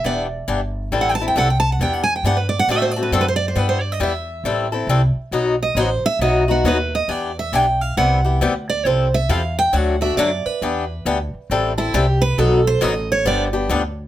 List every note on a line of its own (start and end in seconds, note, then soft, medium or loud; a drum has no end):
0.04 0.47 E1 medium
0.04 0.26 E3 medium
0.04 0.26 B3 medium
0.04 0.26 D4 medium
0.04 0.26 G4 medium
0.04 0.22 D5 loud
0.48 0.91 G1 medium
0.48 0.59 E3 medium
0.48 0.59 B3 medium
0.48 0.60 D4 loud
0.48 0.60 G4 medium
0.92 1.35 A1 medium
0.92 1.14 E3 medium
0.92 1.14 G3 medium
0.92 1.14 C4 medium
0.92 1.14 E4 medium
0.92 1.14 A4 medium
1.01 1.09 F#5 medium
1.09 1.15 G5 medium
1.15 1.25 A5 loud
1.20 1.36 C4 soft
1.20 1.36 E4 medium
1.20 1.36 A4 medium
1.28 1.36 G5 medium
1.36 1.79 C2 medium
1.36 1.47 E3 medium
1.36 1.48 G3 medium
1.36 1.48 C4 medium
1.36 1.48 E4 medium
1.36 1.48 A4 medium
1.36 1.50 F#5 loud
1.50 1.59 G5 medium
1.60 1.70 A5 loud
1.72 1.80 F#5 medium
1.79 2.23 E2 medium
1.79 2.02 E3 medium
1.79 2.02 B3 medium
1.79 2.02 D4 medium
1.79 2.02 G4 medium
1.79 1.93 G5 medium
1.93 2.03 F#5 medium
2.04 2.14 G#5 loud
2.16 2.24 G5 medium
2.23 2.67 G2 medium
2.23 2.36 E3 medium
2.23 2.36 B3 medium
2.23 2.36 D4 medium
2.23 2.37 G4 medium
2.23 2.39 F#5 loud
2.37 2.49 B4 medium
2.49 2.58 D5 medium
2.59 2.68 F#5 loud
2.68 3.11 A2 medium
2.68 2.90 D3 medium
2.68 2.90 A3 medium
2.68 2.90 C4 medium
2.68 2.91 F#4 medium
2.68 2.91 A4 medium
2.68 2.83 E5 medium
2.82 2.91 C5 medium
2.91 3.02 D5 loud
2.96 3.12 C4 soft
2.96 3.12 F#4 medium
2.96 3.12 A4 medium
3.03 3.11 B4 medium
3.12 3.55 F#2 loud
3.12 3.24 D3 medium
3.12 3.24 A3 medium
3.12 3.24 C4 loud
3.12 3.24 F#4 medium
3.12 3.24 A4 loud
3.12 3.20 C5 medium
3.21 3.27 B4 medium
3.28 3.36 C5 medium
3.36 3.46 D5 loud
3.48 3.58 C5 medium
3.55 3.99 G2 medium
3.55 3.77 G3 medium
3.55 3.78 B3 medium
3.55 3.78 E4 medium
3.55 3.78 G4 medium
3.55 3.68 B4 medium
3.69 3.81 C5 medium
3.81 3.92 D5 medium
3.92 4.00 D#5 medium
4.00 4.43 E2 medium
4.00 4.12 G3 medium
4.00 4.12 B3 medium
4.00 4.12 E4 loud
4.00 4.12 G4 medium
4.00 4.43 E5 medium
4.44 4.86 A1 medium
4.44 4.66 E3 medium
4.44 4.66 G3 medium
4.44 4.67 C4 medium
4.44 4.67 E4 medium
4.44 4.67 A4 medium
4.72 4.88 C4 medium
4.72 4.88 E4 medium
4.72 4.88 A4 medium
4.87 5.14 C2 loud
4.87 5.00 E3 medium
4.87 5.00 G3 medium
4.87 5.00 C4 medium
4.87 5.01 E4 medium
4.87 5.01 A4 loud
5.16 muted upright bass stroke soft
5.31 5.74 B1 medium
5.31 5.54 B2 medium
5.31 5.54 F#3 medium
5.31 5.54 B3 medium
5.31 5.55 D#4 medium
5.31 5.54 F#4 medium
5.63 5.79 D#5 medium
5.75 6.02 A1 medium
5.75 5.88 B2 medium
5.75 5.88 F#3 medium
5.75 5.88 B3 loud
5.75 5.88 D#4 medium
5.75 5.89 F#4 loud
5.79 6.05 C5 medium
6.03 6.21 E5 loud
6.03 muted upright bass stroke soft
6.19 6.63 B1 medium
6.19 6.43 B2 medium
6.19 6.43 F#3 medium
6.19 6.43 B3 medium
6.19 6.43 D#4 medium
6.19 6.43 F#4 medium
6.19 6.48 D#5 medium
6.48 6.64 B3 medium
6.48 6.64 D#4 medium
6.48 6.64 F#4 medium
6.48 6.66 F#4 medium
6.64 7.07 D#2 medium
6.64 6.76 B2 medium
6.64 6.76 F#3 medium
6.64 6.76 B3 medium
6.64 6.77 D#4 loud
6.64 6.77 F#4 loud
6.64 6.93 B4 medium
6.95 7.11 D#5 loud
7.08 7.51 E2 medium
7.08 7.30 E3 medium
7.08 7.30 B3 medium
7.08 7.30 D4 medium
7.08 7.31 G4 medium
7.08 7.37 D5 medium
7.39 7.55 E5 medium
7.52 7.95 B1 medium
7.52 7.64 E3 medium
7.52 7.65 B3 medium
7.52 7.65 D4 medium
7.52 7.65 G4 loud
7.52 7.81 G5 loud
7.81 7.97 F5 medium
7.97 8.40 C2 medium
7.97 8.19 C3 medium
7.97 8.19 G3 medium
7.97 8.19 B3 medium
7.97 8.19 E4 medium
7.97 8.19 G4 medium
7.97 8.65 F#5 loud
8.25 8.41 B3 soft
8.25 8.40 E4 medium
8.25 8.40 G4 medium
8.41 8.84 D2 medium
8.41 8.53 C3 medium
8.41 8.53 G3 medium
8.41 8.53 B3 medium
8.41 8.53 E4 medium
8.41 8.53 G4 loud
8.70 8.86 D5 medium
8.85 9.28 C2 medium
8.85 9.07 C3 medium
8.85 9.07 F3 medium
8.85 9.07 C4 medium
8.85 9.07 E4 medium
8.85 9.08 A4 medium
8.85 9.13 C5 medium
9.14 9.30 E5 loud
9.29 9.72 E2 medium
9.29 9.41 C3 medium
9.29 9.41 F3 loud
9.29 9.41 C4 medium
9.29 9.41 E4 medium
9.29 9.41 A4 medium
9.29 9.57 F5 loud
9.59 9.76 G5 loud
9.73 10.16 D2 medium
9.73 9.95 D3 medium
9.73 9.94 F#3 medium
9.73 9.95 A3 medium
9.73 9.95 D4 medium
9.73 9.95 F#4 medium
9.73 10.01 F#5 medium
10.01 10.17 A3 medium
10.01 10.17 D4 medium
10.01 10.17 F#4 medium
10.01 10.17 E5 medium
10.17 10.43 F#2 medium
10.17 10.29 D3 medium
10.17 10.29 F#3 loud
10.17 10.29 A3 loud
10.17 10.29 D4 loud
10.17 10.30 F#4 loud
10.17 10.46 D5 medium
10.46 11.06 B4 loud
10.46 muted upright bass stroke soft
10.62 11.04 E2 medium
10.62 10.83 E3 medium
10.62 10.83 B3 medium
10.62 10.83 D4 medium
10.62 10.84 G4 medium
11.05 11.31 D2 medium
11.05 11.17 E3 medium
11.05 11.17 B3 medium
11.05 11.17 D4 loud
11.05 11.17 G4 loud
11.34 muted upright bass stroke soft
11.50 11.92 A1 medium
11.50 11.72 E3 medium
11.50 11.72 G3 medium
11.50 11.72 C4 medium
11.50 11.72 E4 medium
11.50 11.72 A4 medium
11.78 11.93 C4 medium
11.78 11.93 E4 loud
11.78 11.93 E4 medium
11.78 11.93 A4 medium
11.94 12.36 C2 loud
11.94 12.05 E3 medium
11.94 12.05 G3 medium
11.94 12.05 C4 medium
11.94 12.05 E4 medium
11.94 12.21 G4 medium
11.94 12.05 A4 loud
12.22 12.37 B4 loud
12.38 12.80 B1 medium
12.38 12.59 B2 medium
12.38 12.59 F#3 medium
12.38 12.60 B3 medium
12.38 12.60 D#4 medium
12.38 12.60 F#4 medium
12.38 12.65 A4 medium
12.67 12.83 C5 loud
12.81 13.24 A1 loud
12.81 12.93 B2 medium
12.81 12.93 F#3 loud
12.81 12.93 B3 loud
12.81 12.93 D#4 medium
12.81 12.93 F#4 loud
12.81 13.09 D#5 loud
13.12 13.26 C#5 loud
13.25 13.68 G1 medium
13.25 13.47 D3 medium
13.25 13.47 F3 medium
13.25 13.47 B3 medium
13.25 13.47 D4 medium
13.25 13.47 G4 medium
13.25 13.43 D5 loud
13.53 13.69 B3 medium
13.53 13.69 D4 medium
13.53 13.69 G4 medium
13.69 14.08 D2 loud
13.69 13.81 D3 medium
13.69 13.81 F3 medium
13.69 13.81 B3 medium
13.69 13.81 D4 loud
13.69 13.82 G4 loud